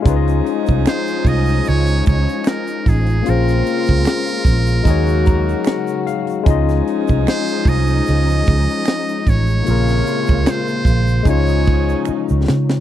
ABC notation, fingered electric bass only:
X:1
M:4/4
L:1/16
Q:"Swing 16ths" 1/4=75
K:Db
V:1 name="Fingered electric bass" clef=bass
D,,2 z C,, z2 C,,2 D,,2 D,, z3 =A,,,2 | B,,,2 z D,, z2 B,,,2 E,,4 z4 | D,,2 z C,, z2 C,,2 D,,2 D,, z3 =A,,,2 | B,,,2 z D,, z2 B,,,2 D,,4 z D,, D,2 |]